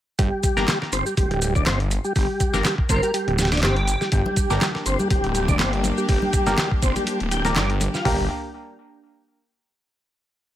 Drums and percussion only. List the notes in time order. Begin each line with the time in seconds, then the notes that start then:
0.19 kick, closed hi-hat, shaker
0.43 kick, closed hi-hat, shaker
0.57 snare, shaker
0.68 snare, clap, closed hi-hat, shaker
0.82 snare
0.93 closed hi-hat, shaker
1.06 shaker
1.17 kick, closed hi-hat, shaker
1.31 closed hi-hat
1.42 closed hi-hat, shaker
1.55 kick, shaker
1.66 snare, clap, closed hi-hat, shaker
1.80 closed hi-hat
1.91 closed hi-hat, shaker
2.05 shaker
2.16 kick, open hi-hat, shaker
2.40 kick, closed hi-hat, shaker
2.54 snare, shaker
2.65 snare, clap, closed hi-hat, shaker
2.78 kick
2.89 kick, closed hi-hat, shaker
3.03 closed hi-hat, shaker
3.14 closed hi-hat, shaker
3.28 closed hi-hat
3.38 snare, closed hi-hat, shaker
3.45 snare, closed hi-hat
3.52 snare, closed hi-hat, shaker
3.57 snare, closed hi-hat
3.63 snare, clap, closed hi-hat, shaker
3.76 closed hi-hat
3.88 closed hi-hat, shaker
4.01 snare, shaker
4.12 kick, closed hi-hat, shaker
4.26 high conga
4.36 kick, closed hi-hat, shaker
4.50 snare, shaker
4.61 snare, clap, closed hi-hat, high conga, shaker
4.75 snare
4.86 closed hi-hat, shaker
4.99 high conga, shaker
5.10 kick, closed hi-hat, shaker
5.24 closed hi-hat
5.35 closed hi-hat, shaker
5.48 kick, high conga, low conga, shaker
5.59 snare, clap, closed hi-hat, shaker
5.73 closed hi-hat
5.84 closed hi-hat, high conga, shaker
5.98 shaker
6.09 kick, open hi-hat, shaker
6.22 high conga
6.33 kick, closed hi-hat, shaker
6.47 snare, shaker
6.58 snare, clap, closed hi-hat, high conga, shaker
6.71 kick
6.82 kick, closed hi-hat, shaker
6.96 closed hi-hat, high conga, shaker
7.07 closed hi-hat, shaker
7.20 closed hi-hat
7.31 closed hi-hat, shaker
7.45 snare, high conga, low conga, shaker
7.56 snare, clap, closed hi-hat, shaker
7.70 closed hi-hat
7.81 closed hi-hat, high conga, shaker
7.94 snare, shaker
8.05 kick, floor tom, open hi-hat